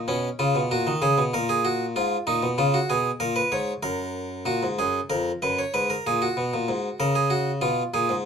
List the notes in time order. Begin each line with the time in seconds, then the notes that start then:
0.08 B2 C#4
0.39 C#3 F4
0.55 B2
0.71 A#2 F#4
0.87 D#3
1.02 C#3 G#4
1.18 B2
1.34 A#2 A#4
1.49 G#4
1.65 F#4
1.96 G#2 F4
2.27 A#2 D#4
2.43 B2
2.58 C#3 F4
2.74 F#4
2.90 B2 G#4
3.20 A#2 A#4
3.36 B4
3.52 G#2 C#5
3.83 F#2 A#4
4.46 A#2 F#4
4.63 G#2
4.79 F#2 G#4
5.10 F2 A#4
5.42 F#2 B4
5.59 C#5
5.74 G#2 B4
5.90 A#4
6.07 A#2 G#4
6.22 F#4
6.37 B2
6.54 A#2
6.68 G#2
7.00 C#3 A#4
7.15 G#4
7.30 F#4
7.62 B2 F4
7.94 A#2 G#4
8.09 G#2